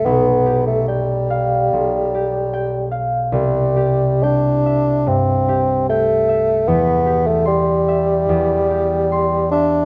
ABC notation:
X:1
M:4/4
L:1/16
Q:1/4=73
K:C
V:1 name="Harp"
[B,,,Gg]2 G2 g2 f2 B,,,2 G2 g2 f2 | C,,2 G2 g2 e2 G,,2 G2 g2 e2 | E,,2 G2 c'2 e2 E,,2 G2 c'2 e2 |]
V:2 name="Bassoon"
B,3 A, G,8- G,2 z2 | G,4 D4 C4 A,4 | B,3 A, G,8- G,2 D2 |]